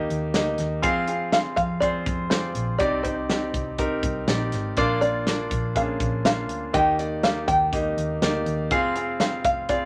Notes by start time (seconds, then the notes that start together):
Already playing: D#3 A#3 D#4 G4 D5 D#5
0.10 D#2, closed hi-hat
0.34 D2 A#3 D#4 G4 D#5, snare, closed hi-hat
0.58 D#2, snare, closed hi-hat
0.82 F2 C4 F4 G#4 F5, kick, closed hi-hat
1.08 C4 F4 G#4 F5, closed hi-hat
1.32 C4 F4 G#4 F5, snare, closed hi-hat
1.56 F2 F5, kick, closed hi-hat
1.80 C4 F4 G#4 C5 D5, kick, closed hi-hat
2.06 F2, kick, closed hi-hat
2.30 C4 F4 G#4 C5 D5, snare, closed hi-hat
2.55 A#1, closed hi-hat
2.79 C2 C3 C4 D#4 G4 D5, kick, closed hi-hat
3.03 C4 D#4 G4 C5 D5, kick, closed hi-hat
3.29 C4 D#4 G4 D5, snare, closed hi-hat
3.54 C2, kick, closed hi-hat
3.78 C4 D#4 G4 A#4, kick, closed hi-hat
4.03 C2, kick, closed hi-hat
4.28 A#1 C4 D#4 G4 D5, snare, closed hi-hat
4.52 G#1, snare, closed hi-hat
4.77 A#1 A#2 A#3 D4 F4 D5, kick, closed hi-hat
5.01 A#3 D4 F4 D5, closed hi-hat
5.27 A#3 D4 F4 D5, snare, closed hi-hat
5.51 A#1, kick, closed hi-hat
5.75 A#3 C#4 F4 G#4 F5, kick, closed hi-hat
5.81 D4
6.00 A#1, kick, closed hi-hat
6.25 A#3 D4 F4 F5, snare, closed hi-hat
6.49 D2, closed hi-hat
6.73 D#2 D#3 A#3 D#4 G4 D#5 G5, kick, closed hi-hat
6.99 A#3 D#4 G4 D5, closed hi-hat
7.23 A#3 D#4 G4 D5 F5, snare, closed hi-hat
7.48 D#2 G5, kick, closed hi-hat
7.73 A#3 D#4 G4 D#5, kick, closed hi-hat
7.97 D#2, closed hi-hat
8.22 D2 A#3 D#4 G4 D5, snare, closed hi-hat
8.46 D#2, closed hi-hat
8.71 F1 C4 F4 G#4 F5, kick, closed hi-hat
8.96 C4 F4 G#4 F5, closed hi-hat
9.20 C4 F4 G#4 F5, snare, closed hi-hat
9.45 F1 F5, kick, closed hi-hat
9.69 C4 F4 G#4 D5 F5, kick, closed hi-hat